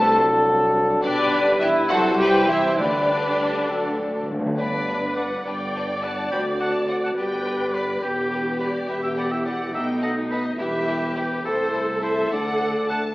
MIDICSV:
0, 0, Header, 1, 11, 480
1, 0, Start_track
1, 0, Key_signature, 1, "major"
1, 0, Tempo, 580271
1, 845, Time_signature, 6, 3, 24, 8
1, 1811, Tempo, 592300
1, 4691, Tempo, 571973
1, 10904, End_track
2, 0, Start_track
2, 0, Title_t, "Violin section"
2, 0, Program_c, 0, 48
2, 0, Note_on_c, 0, 81, 115
2, 123, Note_off_c, 0, 81, 0
2, 844, Note_on_c, 0, 74, 124
2, 1293, Note_off_c, 0, 74, 0
2, 1324, Note_on_c, 0, 76, 104
2, 1390, Note_off_c, 0, 76, 0
2, 1563, Note_on_c, 0, 78, 121
2, 1629, Note_off_c, 0, 78, 0
2, 1808, Note_on_c, 0, 79, 100
2, 2046, Note_off_c, 0, 79, 0
2, 2051, Note_on_c, 0, 76, 100
2, 2290, Note_off_c, 0, 76, 0
2, 2297, Note_on_c, 0, 74, 104
2, 3486, Note_off_c, 0, 74, 0
2, 3745, Note_on_c, 0, 74, 86
2, 4187, Note_off_c, 0, 74, 0
2, 4222, Note_on_c, 0, 78, 72
2, 4457, Note_off_c, 0, 78, 0
2, 4457, Note_on_c, 0, 79, 77
2, 4932, Note_off_c, 0, 79, 0
2, 4932, Note_on_c, 0, 81, 83
2, 5172, Note_off_c, 0, 81, 0
2, 5177, Note_on_c, 0, 83, 75
2, 5244, Note_off_c, 0, 83, 0
2, 5422, Note_on_c, 0, 81, 80
2, 5653, Note_on_c, 0, 78, 73
2, 5654, Note_off_c, 0, 81, 0
2, 5701, Note_off_c, 0, 78, 0
2, 5784, Note_on_c, 0, 81, 61
2, 5830, Note_off_c, 0, 81, 0
2, 5899, Note_on_c, 0, 79, 93
2, 6367, Note_off_c, 0, 79, 0
2, 6376, Note_on_c, 0, 74, 74
2, 6610, Note_off_c, 0, 74, 0
2, 6619, Note_on_c, 0, 71, 75
2, 7095, Note_off_c, 0, 71, 0
2, 7095, Note_on_c, 0, 74, 78
2, 7331, Note_off_c, 0, 74, 0
2, 7337, Note_on_c, 0, 76, 69
2, 7452, Note_off_c, 0, 76, 0
2, 7456, Note_on_c, 0, 79, 73
2, 7572, Note_off_c, 0, 79, 0
2, 7572, Note_on_c, 0, 78, 76
2, 7689, Note_off_c, 0, 78, 0
2, 7694, Note_on_c, 0, 79, 70
2, 7740, Note_off_c, 0, 79, 0
2, 7808, Note_on_c, 0, 78, 75
2, 8041, Note_off_c, 0, 78, 0
2, 8047, Note_on_c, 0, 79, 83
2, 8280, Note_on_c, 0, 78, 68
2, 8281, Note_off_c, 0, 79, 0
2, 8347, Note_off_c, 0, 78, 0
2, 8521, Note_on_c, 0, 75, 73
2, 8756, Note_off_c, 0, 75, 0
2, 8762, Note_on_c, 0, 76, 88
2, 9231, Note_off_c, 0, 76, 0
2, 9242, Note_on_c, 0, 71, 76
2, 9482, Note_off_c, 0, 71, 0
2, 9483, Note_on_c, 0, 72, 89
2, 9955, Note_off_c, 0, 72, 0
2, 9966, Note_on_c, 0, 76, 82
2, 10202, Note_off_c, 0, 76, 0
2, 10210, Note_on_c, 0, 78, 96
2, 10693, Note_off_c, 0, 78, 0
2, 10693, Note_on_c, 0, 81, 83
2, 10904, Note_off_c, 0, 81, 0
2, 10904, End_track
3, 0, Start_track
3, 0, Title_t, "Flute section"
3, 0, Program_c, 1, 73
3, 0, Note_on_c, 1, 81, 97
3, 130, Note_off_c, 1, 81, 0
3, 853, Note_on_c, 1, 74, 108
3, 1298, Note_off_c, 1, 74, 0
3, 1329, Note_on_c, 1, 76, 91
3, 1565, Note_off_c, 1, 76, 0
3, 1574, Note_on_c, 1, 78, 92
3, 1809, Note_off_c, 1, 78, 0
3, 1811, Note_on_c, 1, 79, 90
3, 2048, Note_off_c, 1, 79, 0
3, 2053, Note_on_c, 1, 76, 79
3, 2296, Note_off_c, 1, 76, 0
3, 2303, Note_on_c, 1, 74, 88
3, 3489, Note_off_c, 1, 74, 0
3, 10904, End_track
4, 0, Start_track
4, 0, Title_t, "Oboe"
4, 0, Program_c, 2, 68
4, 3748, Note_on_c, 2, 71, 64
4, 4188, Note_off_c, 2, 71, 0
4, 4219, Note_on_c, 2, 74, 62
4, 4451, Note_off_c, 2, 74, 0
4, 4454, Note_on_c, 2, 74, 49
4, 4937, Note_on_c, 2, 78, 58
4, 4949, Note_off_c, 2, 74, 0
4, 5165, Note_off_c, 2, 78, 0
4, 5170, Note_on_c, 2, 79, 57
4, 5279, Note_off_c, 2, 79, 0
4, 5416, Note_on_c, 2, 78, 63
4, 5523, Note_off_c, 2, 78, 0
4, 5655, Note_on_c, 2, 74, 61
4, 5772, Note_off_c, 2, 74, 0
4, 5778, Note_on_c, 2, 78, 64
4, 5831, Note_off_c, 2, 78, 0
4, 5892, Note_on_c, 2, 74, 55
4, 6373, Note_on_c, 2, 71, 61
4, 6386, Note_off_c, 2, 74, 0
4, 6607, Note_off_c, 2, 71, 0
4, 6612, Note_on_c, 2, 67, 65
4, 7082, Note_off_c, 2, 67, 0
4, 7087, Note_on_c, 2, 71, 59
4, 7195, Note_off_c, 2, 71, 0
4, 7330, Note_on_c, 2, 71, 47
4, 7442, Note_off_c, 2, 71, 0
4, 7447, Note_on_c, 2, 76, 61
4, 7501, Note_off_c, 2, 76, 0
4, 7570, Note_on_c, 2, 74, 72
4, 7690, Note_on_c, 2, 76, 64
4, 7703, Note_off_c, 2, 74, 0
4, 7804, Note_off_c, 2, 76, 0
4, 7809, Note_on_c, 2, 74, 57
4, 8042, Note_off_c, 2, 74, 0
4, 8049, Note_on_c, 2, 76, 64
4, 8156, Note_off_c, 2, 76, 0
4, 8289, Note_on_c, 2, 75, 66
4, 8395, Note_off_c, 2, 75, 0
4, 8524, Note_on_c, 2, 71, 62
4, 8631, Note_off_c, 2, 71, 0
4, 8768, Note_on_c, 2, 71, 65
4, 9234, Note_off_c, 2, 71, 0
4, 9238, Note_on_c, 2, 67, 62
4, 9475, Note_off_c, 2, 67, 0
4, 9481, Note_on_c, 2, 69, 71
4, 9953, Note_off_c, 2, 69, 0
4, 9967, Note_on_c, 2, 72, 63
4, 10203, Note_off_c, 2, 72, 0
4, 10215, Note_on_c, 2, 74, 65
4, 10686, Note_off_c, 2, 74, 0
4, 10697, Note_on_c, 2, 78, 68
4, 10804, Note_off_c, 2, 78, 0
4, 10904, End_track
5, 0, Start_track
5, 0, Title_t, "Trumpet section"
5, 0, Program_c, 3, 61
5, 0, Note_on_c, 3, 69, 88
5, 819, Note_off_c, 3, 69, 0
5, 848, Note_on_c, 3, 71, 85
5, 1556, Note_off_c, 3, 71, 0
5, 1574, Note_on_c, 3, 72, 76
5, 2299, Note_off_c, 3, 72, 0
5, 2302, Note_on_c, 3, 71, 73
5, 3029, Note_off_c, 3, 71, 0
5, 3031, Note_on_c, 3, 69, 63
5, 3512, Note_off_c, 3, 69, 0
5, 10904, End_track
6, 0, Start_track
6, 0, Title_t, "Viola section"
6, 0, Program_c, 4, 48
6, 0, Note_on_c, 4, 69, 87
6, 129, Note_off_c, 4, 69, 0
6, 844, Note_on_c, 4, 62, 94
6, 1293, Note_off_c, 4, 62, 0
6, 1323, Note_on_c, 4, 64, 94
6, 1562, Note_off_c, 4, 64, 0
6, 1569, Note_on_c, 4, 66, 97
6, 1812, Note_off_c, 4, 66, 0
6, 1813, Note_on_c, 4, 67, 97
6, 2049, Note_off_c, 4, 67, 0
6, 2055, Note_on_c, 4, 64, 88
6, 2292, Note_off_c, 4, 64, 0
6, 2299, Note_on_c, 4, 62, 89
6, 3511, Note_off_c, 4, 62, 0
6, 3748, Note_on_c, 4, 71, 69
6, 4423, Note_off_c, 4, 71, 0
6, 4460, Note_on_c, 4, 74, 77
6, 5867, Note_off_c, 4, 74, 0
6, 5898, Note_on_c, 4, 71, 68
6, 6602, Note_off_c, 4, 71, 0
6, 6615, Note_on_c, 4, 67, 75
6, 8017, Note_off_c, 4, 67, 0
6, 8043, Note_on_c, 4, 63, 66
6, 8746, Note_off_c, 4, 63, 0
6, 8760, Note_on_c, 4, 67, 77
6, 9465, Note_off_c, 4, 67, 0
6, 9480, Note_on_c, 4, 69, 84
6, 10904, Note_off_c, 4, 69, 0
6, 10904, End_track
7, 0, Start_track
7, 0, Title_t, "Violin section"
7, 0, Program_c, 5, 48
7, 0, Note_on_c, 5, 72, 92
7, 134, Note_off_c, 5, 72, 0
7, 847, Note_on_c, 5, 67, 89
7, 1295, Note_off_c, 5, 67, 0
7, 1328, Note_on_c, 5, 67, 92
7, 1394, Note_off_c, 5, 67, 0
7, 1570, Note_on_c, 5, 69, 102
7, 1808, Note_off_c, 5, 69, 0
7, 1820, Note_on_c, 5, 71, 102
7, 2052, Note_off_c, 5, 71, 0
7, 2057, Note_on_c, 5, 67, 92
7, 2291, Note_off_c, 5, 67, 0
7, 2300, Note_on_c, 5, 67, 80
7, 3487, Note_off_c, 5, 67, 0
7, 3745, Note_on_c, 5, 71, 49
7, 3748, Note_on_c, 5, 62, 52
7, 3810, Note_off_c, 5, 71, 0
7, 3813, Note_off_c, 5, 62, 0
7, 3993, Note_on_c, 5, 62, 52
7, 3995, Note_on_c, 5, 71, 53
7, 4057, Note_off_c, 5, 62, 0
7, 4060, Note_off_c, 5, 71, 0
7, 4223, Note_on_c, 5, 62, 51
7, 4223, Note_on_c, 5, 71, 48
7, 4288, Note_off_c, 5, 62, 0
7, 4288, Note_off_c, 5, 71, 0
7, 4463, Note_on_c, 5, 62, 56
7, 4463, Note_on_c, 5, 71, 53
7, 4528, Note_off_c, 5, 62, 0
7, 4528, Note_off_c, 5, 71, 0
7, 4703, Note_on_c, 5, 62, 53
7, 4704, Note_on_c, 5, 71, 54
7, 4771, Note_off_c, 5, 62, 0
7, 4772, Note_off_c, 5, 71, 0
7, 4937, Note_on_c, 5, 71, 52
7, 4940, Note_on_c, 5, 62, 54
7, 5004, Note_off_c, 5, 71, 0
7, 5007, Note_off_c, 5, 62, 0
7, 5173, Note_on_c, 5, 72, 51
7, 5174, Note_on_c, 5, 66, 47
7, 5240, Note_off_c, 5, 72, 0
7, 5241, Note_off_c, 5, 66, 0
7, 5404, Note_on_c, 5, 72, 49
7, 5408, Note_on_c, 5, 66, 50
7, 5471, Note_off_c, 5, 72, 0
7, 5475, Note_off_c, 5, 66, 0
7, 5649, Note_on_c, 5, 72, 49
7, 5652, Note_on_c, 5, 66, 47
7, 5716, Note_off_c, 5, 72, 0
7, 5719, Note_off_c, 5, 66, 0
7, 5896, Note_on_c, 5, 67, 51
7, 5898, Note_on_c, 5, 71, 46
7, 5963, Note_off_c, 5, 67, 0
7, 5965, Note_off_c, 5, 71, 0
7, 6130, Note_on_c, 5, 71, 51
7, 6131, Note_on_c, 5, 67, 49
7, 6197, Note_off_c, 5, 71, 0
7, 6198, Note_off_c, 5, 67, 0
7, 6362, Note_on_c, 5, 67, 45
7, 6368, Note_on_c, 5, 71, 55
7, 6429, Note_off_c, 5, 67, 0
7, 6435, Note_off_c, 5, 71, 0
7, 6609, Note_on_c, 5, 67, 47
7, 6610, Note_on_c, 5, 71, 48
7, 6676, Note_off_c, 5, 67, 0
7, 6677, Note_off_c, 5, 71, 0
7, 6846, Note_on_c, 5, 67, 55
7, 6851, Note_on_c, 5, 71, 49
7, 6913, Note_off_c, 5, 67, 0
7, 6918, Note_off_c, 5, 71, 0
7, 7082, Note_on_c, 5, 67, 45
7, 7089, Note_on_c, 5, 71, 47
7, 7149, Note_off_c, 5, 67, 0
7, 7156, Note_off_c, 5, 71, 0
7, 7325, Note_on_c, 5, 67, 53
7, 7329, Note_on_c, 5, 71, 46
7, 7392, Note_off_c, 5, 67, 0
7, 7396, Note_off_c, 5, 71, 0
7, 7564, Note_on_c, 5, 67, 55
7, 7568, Note_on_c, 5, 71, 53
7, 7631, Note_off_c, 5, 67, 0
7, 7635, Note_off_c, 5, 71, 0
7, 7803, Note_on_c, 5, 71, 51
7, 7805, Note_on_c, 5, 67, 49
7, 7870, Note_off_c, 5, 71, 0
7, 7872, Note_off_c, 5, 67, 0
7, 8040, Note_on_c, 5, 63, 51
7, 8042, Note_on_c, 5, 69, 48
7, 8107, Note_off_c, 5, 63, 0
7, 8109, Note_off_c, 5, 69, 0
7, 8275, Note_on_c, 5, 69, 54
7, 8276, Note_on_c, 5, 63, 49
7, 8342, Note_off_c, 5, 69, 0
7, 8343, Note_off_c, 5, 63, 0
7, 8526, Note_on_c, 5, 63, 47
7, 8528, Note_on_c, 5, 69, 48
7, 8593, Note_off_c, 5, 63, 0
7, 8595, Note_off_c, 5, 69, 0
7, 8752, Note_on_c, 5, 64, 58
7, 8759, Note_on_c, 5, 67, 58
7, 8819, Note_off_c, 5, 64, 0
7, 8826, Note_off_c, 5, 67, 0
7, 8993, Note_on_c, 5, 64, 50
7, 8999, Note_on_c, 5, 67, 59
7, 9060, Note_off_c, 5, 64, 0
7, 9066, Note_off_c, 5, 67, 0
7, 9233, Note_on_c, 5, 64, 55
7, 9236, Note_on_c, 5, 67, 52
7, 9300, Note_off_c, 5, 64, 0
7, 9303, Note_off_c, 5, 67, 0
7, 9480, Note_on_c, 5, 69, 53
7, 9482, Note_on_c, 5, 64, 57
7, 9547, Note_off_c, 5, 69, 0
7, 9549, Note_off_c, 5, 64, 0
7, 9719, Note_on_c, 5, 64, 53
7, 9720, Note_on_c, 5, 69, 58
7, 9786, Note_off_c, 5, 64, 0
7, 9787, Note_off_c, 5, 69, 0
7, 9954, Note_on_c, 5, 69, 54
7, 9955, Note_on_c, 5, 64, 55
7, 10021, Note_off_c, 5, 69, 0
7, 10023, Note_off_c, 5, 64, 0
7, 10209, Note_on_c, 5, 62, 60
7, 10213, Note_on_c, 5, 69, 52
7, 10276, Note_off_c, 5, 62, 0
7, 10281, Note_off_c, 5, 69, 0
7, 10447, Note_on_c, 5, 62, 59
7, 10453, Note_on_c, 5, 69, 57
7, 10514, Note_off_c, 5, 62, 0
7, 10520, Note_off_c, 5, 69, 0
7, 10691, Note_on_c, 5, 62, 57
7, 10694, Note_on_c, 5, 69, 57
7, 10758, Note_off_c, 5, 62, 0
7, 10761, Note_off_c, 5, 69, 0
7, 10904, End_track
8, 0, Start_track
8, 0, Title_t, "French horn section"
8, 0, Program_c, 6, 60
8, 0, Note_on_c, 6, 55, 88
8, 0, Note_on_c, 6, 62, 102
8, 100, Note_off_c, 6, 55, 0
8, 133, Note_on_c, 6, 54, 86
8, 844, Note_on_c, 6, 55, 98
8, 846, Note_off_c, 6, 54, 0
8, 1567, Note_off_c, 6, 62, 0
8, 1575, Note_on_c, 6, 64, 84
8, 2167, Note_off_c, 6, 64, 0
8, 2305, Note_on_c, 6, 62, 74
8, 3026, Note_off_c, 6, 55, 0
8, 3029, Note_on_c, 6, 54, 69
8, 3490, Note_off_c, 6, 62, 0
8, 3501, Note_off_c, 6, 54, 0
8, 3744, Note_on_c, 6, 59, 56
8, 3746, Note_on_c, 6, 62, 59
8, 4421, Note_off_c, 6, 59, 0
8, 4422, Note_off_c, 6, 62, 0
8, 4454, Note_on_c, 6, 62, 58
8, 4457, Note_on_c, 6, 59, 61
8, 5156, Note_off_c, 6, 62, 0
8, 5158, Note_off_c, 6, 59, 0
8, 5178, Note_on_c, 6, 66, 54
8, 5180, Note_on_c, 6, 60, 54
8, 5883, Note_off_c, 6, 66, 0
8, 5893, Note_on_c, 6, 59, 53
8, 5893, Note_on_c, 6, 67, 59
8, 5898, Note_off_c, 6, 60, 0
8, 6606, Note_off_c, 6, 67, 0
8, 6608, Note_off_c, 6, 59, 0
8, 6617, Note_on_c, 6, 67, 55
8, 6618, Note_on_c, 6, 59, 52
8, 7317, Note_off_c, 6, 67, 0
8, 7318, Note_off_c, 6, 59, 0
8, 7333, Note_on_c, 6, 67, 54
8, 7336, Note_on_c, 6, 59, 59
8, 7682, Note_off_c, 6, 67, 0
8, 7688, Note_on_c, 6, 64, 53
8, 8034, Note_off_c, 6, 59, 0
8, 8042, Note_on_c, 6, 63, 59
8, 8043, Note_on_c, 6, 57, 58
8, 8046, Note_off_c, 6, 64, 0
8, 8746, Note_off_c, 6, 57, 0
8, 8757, Note_on_c, 6, 55, 62
8, 8757, Note_on_c, 6, 64, 55
8, 8760, Note_off_c, 6, 63, 0
8, 9347, Note_off_c, 6, 55, 0
8, 9347, Note_off_c, 6, 64, 0
8, 9490, Note_on_c, 6, 64, 59
8, 9491, Note_on_c, 6, 57, 65
8, 10195, Note_off_c, 6, 64, 0
8, 10196, Note_off_c, 6, 57, 0
8, 10212, Note_on_c, 6, 57, 60
8, 10216, Note_on_c, 6, 62, 58
8, 10904, Note_off_c, 6, 57, 0
8, 10904, Note_off_c, 6, 62, 0
8, 10904, End_track
9, 0, Start_track
9, 0, Title_t, "Timpani"
9, 0, Program_c, 7, 47
9, 2299, Note_on_c, 7, 50, 96
9, 2995, Note_off_c, 7, 50, 0
9, 3030, Note_on_c, 7, 50, 36
9, 3083, Note_off_c, 7, 50, 0
9, 3092, Note_on_c, 7, 50, 40
9, 3142, Note_off_c, 7, 50, 0
9, 3152, Note_on_c, 7, 50, 42
9, 3205, Note_off_c, 7, 50, 0
9, 3214, Note_on_c, 7, 50, 50
9, 3268, Note_off_c, 7, 50, 0
9, 3278, Note_on_c, 7, 50, 50
9, 3330, Note_off_c, 7, 50, 0
9, 3340, Note_on_c, 7, 50, 55
9, 3392, Note_off_c, 7, 50, 0
9, 3402, Note_on_c, 7, 50, 59
9, 3456, Note_off_c, 7, 50, 0
9, 3466, Note_on_c, 7, 50, 71
9, 3520, Note_off_c, 7, 50, 0
9, 3529, Note_on_c, 7, 50, 88
9, 3583, Note_off_c, 7, 50, 0
9, 3592, Note_on_c, 7, 50, 95
9, 3641, Note_off_c, 7, 50, 0
9, 3651, Note_on_c, 7, 50, 106
9, 3708, Note_off_c, 7, 50, 0
9, 10904, End_track
10, 0, Start_track
10, 0, Title_t, "Cello section"
10, 0, Program_c, 8, 48
10, 0, Note_on_c, 8, 57, 88
10, 123, Note_off_c, 8, 57, 0
10, 846, Note_on_c, 8, 50, 83
10, 1294, Note_off_c, 8, 50, 0
10, 1327, Note_on_c, 8, 52, 76
10, 1394, Note_off_c, 8, 52, 0
10, 1567, Note_on_c, 8, 54, 95
10, 1806, Note_off_c, 8, 54, 0
10, 1810, Note_on_c, 8, 55, 85
10, 2047, Note_off_c, 8, 55, 0
10, 2047, Note_on_c, 8, 52, 84
10, 2291, Note_on_c, 8, 50, 71
10, 2293, Note_off_c, 8, 52, 0
10, 3507, Note_off_c, 8, 50, 0
10, 3750, Note_on_c, 8, 43, 56
10, 4374, Note_off_c, 8, 43, 0
10, 4455, Note_on_c, 8, 43, 64
10, 5086, Note_off_c, 8, 43, 0
10, 5170, Note_on_c, 8, 38, 60
10, 5808, Note_off_c, 8, 38, 0
10, 5892, Note_on_c, 8, 43, 54
10, 6528, Note_off_c, 8, 43, 0
10, 6613, Note_on_c, 8, 40, 58
10, 7246, Note_off_c, 8, 40, 0
10, 7329, Note_on_c, 8, 40, 63
10, 7960, Note_off_c, 8, 40, 0
10, 8048, Note_on_c, 8, 47, 63
10, 8678, Note_off_c, 8, 47, 0
10, 8764, Note_on_c, 8, 40, 64
10, 9397, Note_off_c, 8, 40, 0
10, 9484, Note_on_c, 8, 36, 66
10, 10121, Note_off_c, 8, 36, 0
10, 10208, Note_on_c, 8, 38, 59
10, 10848, Note_off_c, 8, 38, 0
10, 10904, End_track
11, 0, Start_track
11, 0, Title_t, "Double bass section"
11, 0, Program_c, 10, 48
11, 0, Note_on_c, 10, 36, 94
11, 814, Note_off_c, 10, 36, 0
11, 847, Note_on_c, 10, 35, 88
11, 1537, Note_off_c, 10, 35, 0
11, 1575, Note_on_c, 10, 36, 82
11, 2285, Note_off_c, 10, 36, 0
11, 2300, Note_on_c, 10, 38, 70
11, 3019, Note_off_c, 10, 38, 0
11, 3029, Note_on_c, 10, 38, 73
11, 3575, Note_off_c, 10, 38, 0
11, 3753, Note_on_c, 10, 31, 65
11, 4375, Note_off_c, 10, 31, 0
11, 4461, Note_on_c, 10, 31, 60
11, 5089, Note_off_c, 10, 31, 0
11, 5180, Note_on_c, 10, 38, 61
11, 5813, Note_off_c, 10, 38, 0
11, 5900, Note_on_c, 10, 31, 62
11, 6532, Note_off_c, 10, 31, 0
11, 6614, Note_on_c, 10, 28, 60
11, 7246, Note_off_c, 10, 28, 0
11, 7333, Note_on_c, 10, 28, 68
11, 7962, Note_off_c, 10, 28, 0
11, 8050, Note_on_c, 10, 35, 72
11, 8680, Note_off_c, 10, 35, 0
11, 8767, Note_on_c, 10, 28, 61
11, 9398, Note_off_c, 10, 28, 0
11, 9486, Note_on_c, 10, 36, 61
11, 10122, Note_off_c, 10, 36, 0
11, 10210, Note_on_c, 10, 38, 64
11, 10849, Note_off_c, 10, 38, 0
11, 10904, End_track
0, 0, End_of_file